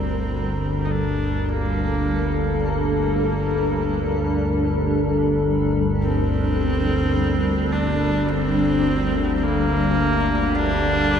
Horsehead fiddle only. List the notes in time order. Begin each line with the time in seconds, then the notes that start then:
Already playing: C4
0.85 D#4
0.92 D4
1.48 A#3
2.64 A#3
6.02 C4
7.72 D4
8.29 C4
9.36 C4
9.43 A#3
10.55 D4